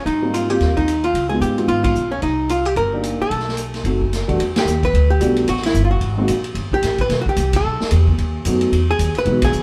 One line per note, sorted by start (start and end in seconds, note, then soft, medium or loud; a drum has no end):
0.05 0.57 G#2 medium
0.05 0.34 D#4 medium
0.05 ride soft
0.22 0.48 G3 medium
0.22 0.48 A#3 soft
0.22 0.48 C4 soft
0.22 0.48 D#4 medium
0.34 0.50 F4 medium
0.34 hi-hat pedal soft
0.34 ride medium
0.50 0.85 G3 medium
0.50 0.85 A#3 soft
0.50 0.86 C4 medium
0.50 0.86 F4 medium
0.50 0.77 G4 medium
0.50 ride soft
0.60 1.12 D#2 medium
0.60 snare soft
0.60 ride soft
0.77 1.02 D#4 medium
0.77 kick soft
0.77 ride soft
0.88 hi-hat pedal soft
0.88 ride medium
1.04 1.29 F4 medium
1.04 ride soft
1.13 1.39 C#2 medium
1.13 ride medium
1.29 1.56 G#3 medium
1.29 1.56 B3 soft
1.29 1.56 D#4 soft
1.29 1.56 F4 medium
1.29 1.41 G#4 medium
1.41 1.66 G#2 medium
1.41 1.68 G4 medium
1.41 hi-hat pedal soft
1.41 ride soft
1.58 1.93 G#3 medium
1.58 1.94 B3 soft
1.58 1.94 D#4 soft
1.58 1.94 F4 medium
1.58 ride soft
1.68 1.93 G#1 medium
1.68 1.83 F4 medium
1.68 ride soft
1.84 2.10 F4 medium
1.84 kick medium
1.84 ride medium
1.95 2.20 B1 medium
1.95 hi-hat pedal soft
2.11 2.22 C#4 medium
2.22 2.74 C2 medium
2.22 2.48 D#4 medium
2.22 ride soft
2.49 2.66 F4 medium
2.49 hi-hat pedal soft
2.49 ride medium
2.65 2.77 G4 medium
2.65 ride soft
2.76 3.17 G1 medium
2.76 3.17 A#4 medium
2.76 ride soft
2.93 3.29 A#3 medium
2.93 3.29 D4 medium
2.93 3.29 D#4 medium
2.93 3.29 G4 medium
3.03 hi-hat pedal medium
3.03 ride medium
3.19 4.09 A4 medium
3.19 muted upright bass stroke soft
3.30 3.82 B1 medium
3.30 ride soft
3.39 snare soft
3.49 snare soft
3.57 hi-hat pedal medium
3.57 ride soft
3.74 snare soft
3.74 ride soft
3.84 4.25 F#1 medium
3.84 4.00 A3 soft
3.84 4.00 C4 soft
3.84 4.00 D#4 soft
3.84 4.00 F#4 medium
3.84 ride soft
4.01 kick soft
4.13 snare soft
4.13 hi-hat pedal soft
4.13 ride soft
4.28 4.37 F1 medium
4.28 4.38 E2 medium
4.28 4.38 G3 medium
4.28 4.38 A3 medium
4.28 4.38 D4 medium
4.28 4.38 F#4 medium
4.28 kick soft
4.28 ride soft
4.38 4.65 E2 medium
4.38 ride medium
4.56 4.82 G4 medium
4.56 snare medium
4.56 ride medium
4.65 4.92 D#2 medium
4.65 hi-hat pedal medium
4.83 5.09 B4 medium
4.83 kick medium
4.83 ride soft
4.93 5.20 D2 medium
4.93 ride soft
5.10 5.49 G4 medium
5.20 5.47 B1 medium
5.20 5.48 G3 medium
5.20 5.48 A3 soft
5.20 5.48 B3 soft
5.20 5.48 D4 medium
5.20 5.48 F#4 medium
5.20 hi-hat pedal medium
5.20 ride medium
5.36 ride soft
5.48 5.74 A1 medium
5.48 5.63 F#4 medium
5.48 ride medium
5.57 snare soft
5.63 5.84 E4 medium
5.63 snare soft
5.63 ride medium
5.74 6.00 G1 medium
5.74 hi-hat pedal soft
5.85 5.90 F4 medium
5.91 6.41 F#4 medium
6.01 6.27 G#1 medium
6.01 ride soft
6.18 6.28 G#3 medium
6.18 6.28 A#3 medium
6.18 6.28 C4 medium
6.18 6.28 D#4 medium
6.18 6.28 F#4 medium
6.28 6.54 A#1 medium
6.28 hi-hat pedal medium
6.28 ride medium
6.44 ride soft
6.55 6.82 G1 medium
6.55 ride medium
6.72 7.01 G4 medium
6.72 kick soft
6.82 7.09 A1 medium
6.82 snare soft
6.82 hi-hat pedal medium
6.82 ride medium
6.98 7.18 B4 medium
6.98 kick soft
6.98 ride soft
7.09 7.25 B1 medium
7.09 snare soft
7.09 ride medium
7.21 7.28 F#4 medium
7.26 7.53 G4 medium
7.26 muted upright bass stroke soft
7.26 kick medium
7.36 7.63 C2 medium
7.36 hi-hat pedal medium
7.36 ride medium
7.53 8.05 A4 medium
7.53 kick medium
7.53 ride medium
7.65 7.79 B1 medium
7.80 muted upright bass stroke soft
7.80 snare soft
7.91 8.18 E2 medium
7.91 hi-hat pedal soft
7.91 ride medium
8.07 kick medium
8.18 8.45 D#2 medium
8.18 ride soft
8.45 8.71 F#2 medium
8.45 8.73 F#3 medium
8.45 8.73 A3 soft
8.45 8.73 B3 soft
8.45 8.73 D#4 soft
8.45 8.73 F#4 medium
8.45 hi-hat pedal medium
8.45 ride medium
8.61 ride soft
8.72 8.98 E2 medium
8.72 ride medium
8.91 9.17 G#4 medium
8.99 9.14 D#2 medium
8.99 hi-hat pedal medium
8.99 ride medium
9.15 9.42 B4 medium
9.15 muted upright bass stroke soft
9.15 ride soft
9.25 9.51 B1 medium
9.25 9.41 E3 medium
9.25 9.41 G#3 soft
9.25 9.41 B3 soft
9.25 9.41 D#4 medium
9.25 9.41 F#4 medium
9.25 ride soft
9.42 9.63 G#4 loud
9.42 kick medium
9.42 ride medium
9.52 9.61 E2 medium
9.52 hi-hat pedal medium